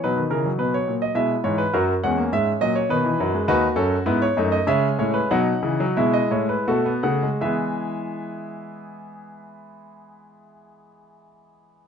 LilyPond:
<<
  \new Staff \with { instrumentName = "Grand piano" } { \time 3/4 \key e \major \tempo 4 = 94 << { b'8 ais'8 b'16 cis''8 dis''16 e''8 cis''16 b'16 | ais'8 fis''8 e''8 dis''16 cis''16 b'4 | b'8 a'8 b'16 cis''8 dis''16 e''8 cis''16 b'16 | fis''4 e''16 dis''16 cis''16 b'16 a'8 fis''8 |
<b e' e''>2.~ | <b e' e''>2. | } \\ { dis'2 e'4 | fis'8 cis'4. dis'4 | fis'4 e'8 dis'8 cis'4 | dis'4 e'4 fis'4 |
gis'2.~ | gis'2. | } >> }
  \new Staff \with { instrumentName = "Grand piano" } { \clef bass \time 3/4 \key e \major << { fis16 dis16 e16 fis4~ fis16 gis8 e8 | fis8 gis16 ais16 gis8 fis8 dis16 e16 fis16 gis16 | dis'8 cis'8 b8 a8 gis4 | fis8 e16 fis16 gis4 a16 b16 a16 gis16 |
gis2.~ | gis2. | } \\ { b,8 cis8 b,8 ais,8 b,8 gis,8 | fis,8 e,8 gis,8 ais,8 b,8 fis,8 | dis,8 fis,8 gis,8 fis,8 cis8 a,8 | b,8 cis8 b,8 a,8 b,8 cis8 |
e2.~ | e2. | } >> }
>>